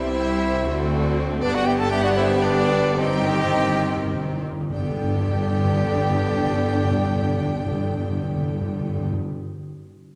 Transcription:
Already playing: cello section C2, double bass section C2, viola section G3 C4, french horn section C4 E4, violin section E4 G4 E5, trumpet E4, flute C5
0.67 double bass section D2, cello section D2, viola section D3 C4, french horn section C4 F#4, violin section D4 F#4
1.41 double bass section G1, cello section G2, viola section D3 B3, french horn section B3 G4, violin section D4 G4 D5, trumpet D4, flute B4
1.53 trumpet F#4, flute D5, violin section F#5
1.65 trumpet G4, flute E5, violin section G5
1.78 trumpet A4, flute F#5, violin section A5
1.91 trumpet G4, flute E5, violin section G5
2.02 trumpet F#4, flute D5, violin section F#5
2.15 trumpet E4, flute C5, violin section E5
2.41 trumpet D4, flute B4, violin section D5
2.97 timpani G2, viola section D#3 C4, violin section C4 G4 G5, french horn section C4 D#4, trumpet G4, flute D#5
3.05 timpani G2
3.13 timpani G2
3.22 timpani G2
3.29 timpani G2
3.38 timpani G2
3.46 timpani G2
3.54 timpani G2
3.62 timpani G2
3.71 timpani G2
3.79 timpani G2
3.87 timpani G2
3.97 timpani G2
4.05 timpani G2
4.14 timpani G2
4.23 timpani G2
4.33 timpani G2
4.42 timpani G2
4.52 timpani G2
4.61 timpani G2
4.70 double bass section G1, timpani G2, cello section G2, viola section D3 B3, french horn section B3 D4, violin section D4 G4 G5, trumpet G4, flute D5
4.77 timpani G2
4.84 timpani G2
4.90 timpani G2
4.97 timpani G2
5.03 timpani G2
5.09 timpani G2
5.15 timpani G2
5.22 timpani G2
5.28 timpani G2
5.34 timpani G2
5.40 timpani G2
5.46 timpani G2
5.53 timpani G2
5.59 timpani G2
5.65 timpani G2
5.71 timpani G2
5.78 timpani G2
5.84 timpani G2
5.90 timpani G2
5.97 timpani G2
6.03 timpani G2
6.10 timpani G2
6.15 timpani G2
6.21 timpani G2
6.28 timpani G2
6.34 timpani G2
6.40 timpani G2
6.46 timpani G2
6.53 timpani G2
6.59 timpani G2
6.66 timpani G2
6.72 timpani G2
6.79 timpani G2
6.85 timpani G2
6.91 timpani G2
6.97 timpani G2
7.03 timpani G2
7.10 timpani G2
7.16 timpani G2
7.22 timpani G2
7.29 timpani G2
7.35 timpani G2
7.41 timpani G2
7.47 timpani G2
7.53 timpani G2
7.60 timpani G2
7.66 timpani G2
7.72 timpani G2
7.78 timpani G2
7.84 timpani G2
7.91 timpani G2
7.97 timpani G2
8.04 timpani G2
8.10 timpani G2
8.16 timpani G2
8.23 timpani G2
8.29 timpani G2
8.36 timpani G2
8.43 timpani G2
8.49 timpani G2
8.55 timpani G2
8.61 timpani G2
8.68 timpani G2
8.74 timpani G2
8.80 timpani G2
8.87 timpani G2
8.93 timpani G2
8.99 timpani G2
9.05 timpani G2
9.12 timpani G2
9.19 timpani G2

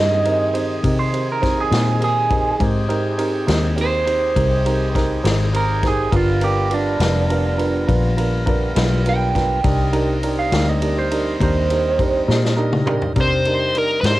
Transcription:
Already playing: fingered electric bass G2, tonewheel organ D#3 C4 D#4 G#4, upright piano C4 D#4 G4 A#4, clean electric guitar D#5
0.25 upright piano C4 D#4 G4 A#4, ride
0.53 upright piano C4 D#4 G4 C5, ride
0.84 fingered electric bass C3, upright piano C4 D#4 G4 A#4, kick, ride
0.99 clean electric guitar C5
1.13 upright piano C4 D#4 G4 A#4, ride
1.32 clean electric guitar A#4
1.42 upright piano C4 D#4 G4 C5, kick, snare, ride
1.61 clean electric guitar G#4
1.70 fingered electric bass A#2, upright piano C4 D#4 G4 A#4, snare, ride
2.00 upright piano C4 D#4 G4 A#4, ride
2.04 clean electric guitar G#4
2.29 upright piano C4 D#4 G4 A#4, kick, ride
2.60 fingered electric bass G#2, upright piano C4 D#4 G4 A#4, tonewheel organ C4 D#4 G4 G#4, kick, ride
2.88 upright piano C4 D#4 G4 A#4, ride
3.18 upright piano C4 D#4 G4 A#4, ride
3.47 fingered electric bass D#2, upright piano C4 D#4 G4 A#4, snare, ride
3.76 upright piano C4 D#4 G4 A#4, ride
3.81 clean electric guitar C5
4.06 upright piano C4 D#4 G4 C5, ride
4.36 fingered electric bass C2, upright piano C4 D#4 G4 A#4, kick, ride
4.66 upright piano C4 D#4 G4 A#4, ride
4.93 upright piano C4 D#4 G4 A#4, clean electric guitar A#4, kick, snare, ride
5.24 fingered electric bass G#1, upright piano C4 D#4 G4 A#4, snare, ride
5.53 upright piano C4 D#4 G4 A#4, clean electric guitar A#4, ride
5.83 upright piano C4 D#4 G4 A#4, kick, snare, ride
5.87 clean electric guitar G#4
6.11 fingered electric bass G1, tonewheel organ G3 B3 F4 A#4, upright piano B3 D4 F4 A#4, kick, ride
6.16 clean electric guitar F4
6.41 upright piano B3 D4 F4 A#4, clean electric guitar G4, ride
6.70 upright piano B3 D4 F4 G4, clean electric guitar D4, ride
7.00 fingered electric bass F1, upright piano B3 D4 F4 A#4, snare, ride
7.30 upright piano B3 D4 F4 A#4, ride
7.58 upright piano B3 D4 F4 A#4, ride
7.87 fingered electric bass A#1, upright piano B3 D4 F4 A#4, kick, ride
8.17 upright piano B3 D4 F4 A#4, ride
8.46 upright piano B3 D4 F4 A#4, kick, ride
8.75 fingered electric bass B1, upright piano B3 D4 F4 B4, snare, ride
9.06 upright piano B3 D4 F4 A#4, clean electric guitar G5, ride
9.35 upright piano B3 D4 F4 A#4, kick, snare, ride
9.64 fingered electric bass C2, tonewheel organ G3 C4 D#4 A#4, upright piano D4 D#4 G4 A#4, kick, ride
9.93 upright piano D4 D#4 G4 A#4, ride
10.23 upright piano D4 D#4 G4 A#4, ride
10.39 clean electric guitar F5
10.52 fingered electric bass D2, upright piano D4 D#4 G4 A#4, snare, ride
10.69 clean electric guitar D#5
10.82 upright piano D4 D#4 G4 A#4, ride
10.99 clean electric guitar C5
11.11 upright piano D4 D#4 G4 A#4, ride
11.40 fingered electric bass D#2, upright piano D4 D#4 G4 A#4, clean electric guitar C5, kick, ride
11.70 upright piano D4 D#4 G4 A#4, ride
11.99 upright piano D4 D#4 G4 A#4, kick, ride
12.28 fingered electric bass A#2, upright piano D4 D#4 G4 A#4, snare
12.45 snare
12.57 upright piano D4 D#4 G4 A#4
12.73 mid tom
12.86 upright piano D4 D#4 G4 A#4, mid tom
13.02 floor tom
13.15 fingered electric bass C3, tonewheel organ G3 C4 D#4 A#4, upright piano D4 D#4 G4 A#4, kick, ride
13.21 lead electric guitar C5
13.45 upright piano D4 D#4 G4 A#4, ride
13.75 upright piano D4 D#4 G4 A#4, lead electric guitar A#4, ride
14.01 fingered electric bass G#2, upright piano D4 D#4 G4 A#4, lead electric guitar B4, ride
14.05 lead electric guitar C5, snare

